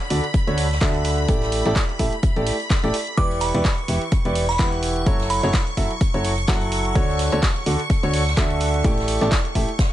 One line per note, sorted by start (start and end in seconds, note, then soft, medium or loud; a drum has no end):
0.00 3.19 B5 medium
0.00 closed hi-hat soft
0.10 0.21 D2 medium
0.10 0.23 D3 medium
0.10 0.23 D4 medium
0.10 0.23 F#4 medium
0.10 0.23 A4 medium
0.10 0.23 D5 medium
0.10 closed hi-hat medium
0.10 open hi-hat loud
0.24 closed hi-hat medium
0.34 kick loud
0.34 closed hi-hat medium
0.47 0.79 D2 loud
0.47 0.65 D3 medium
0.47 0.65 D4 medium
0.47 0.65 F#4 medium
0.47 0.65 A4 medium
0.47 0.65 C#5 medium
0.47 closed hi-hat soft
0.58 closed hi-hat medium
0.58 open hi-hat loud
0.71 snare medium
0.81 1.26 D2 loud
0.81 1.26 D3 medium
0.81 1.26 D4 medium
0.81 1.26 F#4 medium
0.81 1.26 A4 medium
0.81 1.26 E5 medium
0.81 kick loud
0.81 snare loud
0.81 clap loud
0.81 closed hi-hat medium
0.95 closed hi-hat soft
1.05 closed hi-hat medium
1.05 open hi-hat loud
1.18 closed hi-hat soft
1.28 1.63 A1 medium
1.28 1.62 A3 medium
1.28 1.62 E4 medium
1.28 1.62 G4 medium
1.28 1.62 A4 medium
1.28 1.62 D5 medium
1.28 kick loud
1.28 closed hi-hat medium
1.42 snare soft
1.42 closed hi-hat soft
1.52 closed hi-hat medium
1.52 open hi-hat loud
1.66 1.73 A1 loud
1.66 1.75 A3 medium
1.66 1.75 E4 medium
1.66 1.75 G4 medium
1.66 1.75 A4 medium
1.66 1.75 D5 loud
1.66 clap soft
1.66 closed hi-hat medium
1.76 kick loud
1.76 snare loud
1.76 clap loud
1.76 closed hi-hat medium
1.89 closed hi-hat soft
1.99 2.10 A1 loud
1.99 2.12 A3 medium
1.99 2.12 E4 medium
1.99 2.12 G4 medium
1.99 2.12 A4 medium
1.99 2.12 E5 medium
1.99 kick medium
1.99 closed hi-hat medium
1.99 open hi-hat loud
2.13 closed hi-hat medium
2.23 kick loud
2.23 closed hi-hat medium
2.36 2.51 A1 medium
2.36 2.54 A3 medium
2.36 2.54 E4 medium
2.36 2.54 G4 medium
2.36 2.54 A4 medium
2.36 2.54 D5 medium
2.36 closed hi-hat soft
2.46 closed hi-hat medium
2.46 open hi-hat loud
2.60 closed hi-hat soft
2.70 kick loud
2.70 snare loud
2.70 clap loud
2.70 closed hi-hat medium
2.84 2.91 A1 medium
2.84 2.93 A3 medium
2.84 2.94 E4 medium
2.84 2.93 G4 medium
2.84 2.93 A4 medium
2.84 2.93 D5 loud
2.84 closed hi-hat soft
2.94 closed hi-hat medium
2.94 open hi-hat loud
3.07 closed hi-hat soft
3.17 3.52 E1 medium
3.17 3.51 E3 medium
3.17 3.51 E4 medium
3.17 3.51 G4 medium
3.17 3.51 B4 medium
3.17 3.51 D5 medium
3.17 9.93 C#6 medium
3.17 3.35 D6 medium
3.17 kick loud
3.17 closed hi-hat medium
3.31 closed hi-hat soft
3.40 3.59 B5 medium
3.40 snare soft
3.40 closed hi-hat medium
3.40 open hi-hat loud
3.54 3.62 E1 loud
3.54 3.64 E3 medium
3.54 3.64 E4 medium
3.54 3.64 G4 medium
3.54 3.64 B4 medium
3.54 3.64 D5 loud
3.54 closed hi-hat medium
3.64 kick loud
3.64 snare loud
3.64 clap loud
3.64 closed hi-hat medium
3.78 closed hi-hat soft
3.88 3.98 E1 medium
3.88 4.01 E3 medium
3.88 4.01 E4 medium
3.88 4.01 G4 medium
3.88 4.01 B4 medium
3.88 4.01 E5 medium
3.88 closed hi-hat medium
3.88 open hi-hat medium
4.02 closed hi-hat soft
4.12 kick loud
4.12 closed hi-hat medium
4.25 4.57 E1 loud
4.25 4.43 E3 medium
4.25 4.43 E4 medium
4.25 4.43 G4 medium
4.25 4.43 B4 medium
4.25 4.43 D5 medium
4.25 closed hi-hat soft
4.35 closed hi-hat medium
4.35 open hi-hat loud
4.49 4.65 B5 medium
4.49 snare medium
4.49 closed hi-hat soft
4.59 5.04 E1 loud
4.59 5.04 E3 medium
4.59 5.04 E4 medium
4.59 5.04 G4 medium
4.59 5.04 B4 medium
4.59 5.04 F#5 medium
4.59 kick loud
4.59 snare loud
4.59 clap loud
4.59 closed hi-hat medium
4.72 closed hi-hat soft
4.83 closed hi-hat medium
4.83 open hi-hat medium
4.96 closed hi-hat soft
5.06 5.41 F#1 medium
5.06 5.40 F#3 medium
5.06 5.40 E4 medium
5.06 5.40 F#4 medium
5.06 5.40 A4 medium
5.06 5.40 C#5 medium
5.06 kick loud
5.06 closed hi-hat medium
5.20 snare soft
5.20 closed hi-hat soft
5.30 5.67 B5 medium
5.30 closed hi-hat medium
5.30 open hi-hat loud
5.43 5.51 F#1 loud
5.43 5.53 F#3 medium
5.43 5.53 E4 medium
5.43 5.53 F#4 medium
5.43 5.53 A4 medium
5.43 5.53 C#5 loud
5.43 clap soft
5.43 closed hi-hat medium
5.53 kick loud
5.53 snare loud
5.53 clap loud
5.53 closed hi-hat medium
5.67 closed hi-hat soft
5.77 5.87 F#1 medium
5.77 5.90 F#3 medium
5.77 5.90 E4 medium
5.77 5.90 F#4 medium
5.77 5.90 A4 medium
5.77 5.90 E5 medium
5.77 kick medium
5.77 closed hi-hat medium
5.77 open hi-hat medium
5.91 closed hi-hat medium
6.01 kick loud
6.01 closed hi-hat medium
6.14 6.46 F#1 loud
6.14 6.32 F#3 medium
6.14 6.32 E4 medium
6.14 6.32 F#4 medium
6.14 6.32 A4 medium
6.14 6.32 C#5 medium
6.14 closed hi-hat soft
6.25 closed hi-hat medium
6.25 open hi-hat loud
6.38 closed hi-hat soft
6.48 6.93 F#1 loud
6.48 6.93 F#3 medium
6.48 6.93 E4 medium
6.48 6.93 F#4 medium
6.48 6.93 A4 medium
6.48 6.93 F#5 medium
6.48 kick loud
6.48 snare loud
6.48 clap loud
6.48 closed hi-hat loud
6.48 closed hi-hat medium
6.62 closed hi-hat soft
6.72 closed hi-hat medium
6.72 open hi-hat medium
6.85 closed hi-hat soft
6.95 7.30 D2 medium
6.95 7.29 D3 medium
6.95 7.29 D4 medium
6.95 7.29 F#4 medium
6.95 7.29 A4 medium
6.95 7.29 C#5 medium
6.95 kick loud
6.95 closed hi-hat medium
7.09 closed hi-hat soft
7.19 snare soft
7.19 closed hi-hat medium
7.19 open hi-hat loud
7.32 7.40 D2 loud
7.32 7.42 D3 medium
7.32 7.42 D4 medium
7.32 7.42 F#4 medium
7.32 7.42 A4 medium
7.32 7.42 C#5 loud
7.32 closed hi-hat medium
7.42 kick loud
7.42 snare loud
7.42 clap loud
7.42 closed hi-hat medium
7.56 closed hi-hat soft
7.66 7.76 D2 loud
7.66 7.79 D3 medium
7.66 7.79 D4 medium
7.66 7.79 F#4 medium
7.66 7.79 A4 medium
7.66 7.79 D5 medium
7.66 closed hi-hat medium
7.66 open hi-hat medium
7.80 closed hi-hat medium
7.90 kick loud
7.90 closed hi-hat medium
8.03 8.35 D2 loud
8.03 8.21 D3 medium
8.03 8.21 D4 medium
8.03 8.21 F#4 medium
8.03 8.21 A4 medium
8.03 8.21 C#5 medium
8.03 closed hi-hat soft
8.13 closed hi-hat medium
8.13 open hi-hat loud
8.27 snare medium
8.27 closed hi-hat soft
8.37 8.82 D2 loud
8.37 8.82 D3 medium
8.37 8.82 D4 medium
8.37 8.82 F#4 medium
8.37 8.82 A4 medium
8.37 8.82 E5 medium
8.37 kick loud
8.37 snare loud
8.37 clap loud
8.37 closed hi-hat medium
8.50 closed hi-hat soft
8.60 closed hi-hat medium
8.60 open hi-hat medium
8.74 closed hi-hat soft
8.84 9.19 A1 medium
8.84 9.18 A3 medium
8.84 9.18 E4 medium
8.84 9.18 G4 medium
8.84 9.18 A4 medium
8.84 9.18 D5 medium
8.84 kick loud
8.84 closed hi-hat medium
8.98 snare soft
8.98 closed hi-hat soft
9.08 closed hi-hat medium
9.08 open hi-hat loud
9.21 9.29 A1 loud
9.21 9.31 A3 medium
9.21 9.31 E4 medium
9.21 9.31 G4 medium
9.21 9.31 A4 medium
9.21 9.31 D5 loud
9.21 clap soft
9.21 closed hi-hat medium
9.32 kick loud
9.32 snare loud
9.32 clap loud
9.32 closed hi-hat medium
9.45 closed hi-hat soft
9.55 9.65 A1 medium
9.55 9.68 A3 medium
9.55 9.68 E4 medium
9.55 9.68 G4 medium
9.55 9.68 A4 medium
9.55 9.68 E5 medium
9.55 kick medium
9.55 closed hi-hat medium
9.55 open hi-hat medium
9.69 closed hi-hat medium
9.79 kick loud
9.79 snare loud
9.79 closed hi-hat medium